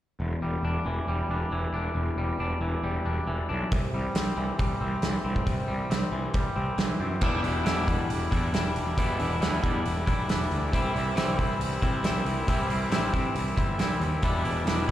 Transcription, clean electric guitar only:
0.21 E2
0.42 G3
0.65 D4
0.86 E3
1.08 G3
1.31 D4
1.52 E3
1.74 D4
1.95 E2
2.18 G3
2.40 D4
2.62 E3
2.84 G3
3.06 D4
3.27 E3
3.49 D4
3.72 C3
3.94 G3
4.15 C4
4.37 E3
4.59 G3
4.81 C4
5.03 E3
5.24 C4
5.46 C3
5.68 G3
5.90 C4
6.12 E3
6.34 G3
6.56 C4
6.78 E3
7.00 C4
7.21 E2 B2 E3 G3 D4 E4
7.42 E3 G3 D4 E4
7.65 E2 B2 E3 G3 D4 E4
7.87 E3 G3 D4 E4
8.31 E3 G3 D4 E4
8.53 E3 G3 D4 E4
8.97 E2 B2 E3 G3 D4 E4
9.19 E3 G3 D4 E4
9.41 E2 B2 E3 G3 D4 E4
9.63 E3 G3 D4 E4
10.06 E3 G3 D4 E4
10.28 E3 G3 D4 E4
10.72 C3 E3 G3 C4 E4
10.93 G3 C4 E4
11.15 C3 E3 G3 C4 E4
11.38 G3 C4 E4
11.82 G3 C4 E4
12.03 E3 G3 C4 E4
12.47 C3 E3 G3 C4 E4
12.69 G3 C4 E4
12.90 C3 E3 G3 C4 E4
13.13 G3 C4 E4
13.57 G3 C4 E4
13.78 E3 G3 C4 E4
14.22 E2 B2 E3 G3 D4 E4
14.44 E3 G3 D4 E4
14.66 E2 B2 E3 G3 D4 E4
14.88 E4

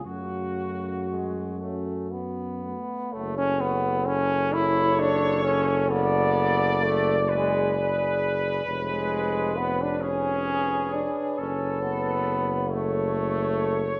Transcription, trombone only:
0.05 C#3
1.10 G#3
1.61 A3
2.11 B3
3.12 A3
3.38 C#4
3.60 B3
4.07 C#4
4.53 E4
4.99 D4
5.44 C#4
5.91 B3
6.84 A3
7.30 G#3
8.66 G#3
9.58 B3
9.82 D4
10.03 C#4
10.93 D4
11.38 C#4
11.82 B3
12.71 A3

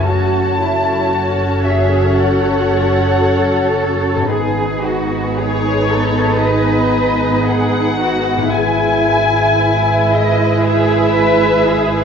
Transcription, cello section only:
0.07 F#4
0.60 E4
1.13 F#4
1.66 G#4
2.19 A4
2.72 A4
4.32 G#4
4.85 F#4
5.37 G#4
5.90 A4
6.43 B4
7.48 G#4
8.01 F#4
8.53 E4
10.63 G#4
11.15 B4
11.67 G#4

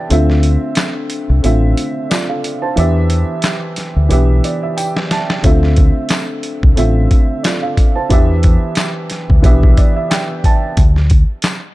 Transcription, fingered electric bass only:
0.11 D2
1.30 C2
1.44 A1
2.78 E2
3.96 D2
4.11 B1
5.44 D2
6.63 C2
6.78 A1
8.11 E2
9.30 D2
9.44 B1
10.78 D2

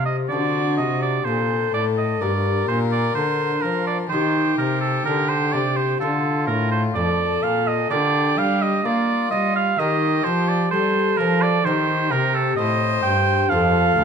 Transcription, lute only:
Already playing: C3 D4 F4
0.32 D3 C4 D4 F#4
0.80 C3
1.27 A#2
1.74 A2
2.21 G2 A#3 D4 G4
2.70 A#2
3.17 D3
3.65 F3
4.12 D#3 A#3 D#4 G4
4.60 C3
5.07 D3
5.54 C3
6.01 D3 D4 F4 A4
6.49 A2
6.96 F2
7.43 A#2
7.91 D3 D4 F4 A#4
8.39 G3
8.85 A#3
9.32 G3
9.79 D#3 A#3 G4 A#4
10.27 F3
10.73 G3
11.20 F3
11.67 D#3 C4 G4
12.12 C3
12.58 A2
13.05 G2
13.51 F2 C4 F4 A4
13.98 D2

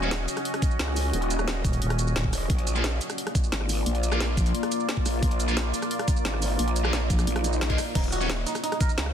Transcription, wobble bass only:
Already playing: D#1
0.79 C#2
1.13 D#1
2.33 D#1
2.50 A#1
3.52 G#1
3.86 A#1
5.06 A#1
5.23 A#1
6.25 G#1
6.59 A#1
7.27 A#1
7.95 D#1
8.98 C#2

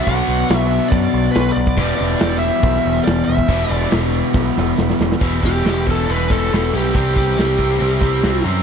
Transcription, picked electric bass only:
0.07 B1
0.28 B1
0.50 B1
0.92 F#2
1.14 B1
1.36 B1
1.57 B1
1.77 E1
2.01 E1
2.21 E1
2.63 B1
2.85 E1
3.07 E1
3.28 E1
3.48 E1
3.70 E1
3.92 E1
4.35 B1
4.58 E1
4.78 E1
5.00 E1
5.21 E1
5.43 E1
5.65 E1
5.87 E1
6.09 E1
6.30 E1
6.52 E1
6.73 B1
6.95 C2
7.38 C2
7.81 C2
8.23 C2
8.44 F#2

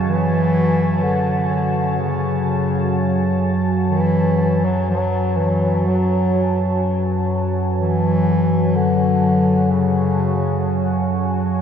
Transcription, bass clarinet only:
0.06 E3
1.02 D3
2.00 C#3
3.91 E3
4.65 F#3
4.90 F#3
5.37 E3
5.88 F#3
7.79 E3
8.75 D3
9.71 C#3

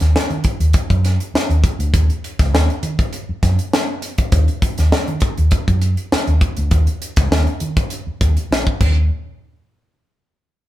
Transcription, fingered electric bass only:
0.01 D#2
0.15 muted fingered electric bass stroke
0.30 D#3
0.60 D#2
0.74 muted fingered electric bass stroke
0.90 F#2
1.34 muted fingered electric bass stroke
1.49 D#2
1.79 D2
1.94 D#2
2.40 C#2
2.53 D#2
2.83 D#3
3.29 muted fingered electric bass stroke
3.43 F#2
4.33 D#2
4.79 D#2
5.08 D#3
5.38 D#2
5.52 muted fingered electric bass stroke
5.68 F#2
6.12 muted fingered electric bass stroke
6.28 D#2
6.58 D2
6.71 D#2
7.17 C#2
7.31 D#2
7.61 D#3
8.07 muted fingered electric bass stroke
8.21 D#2
8.51 A#1
8.80 D#2

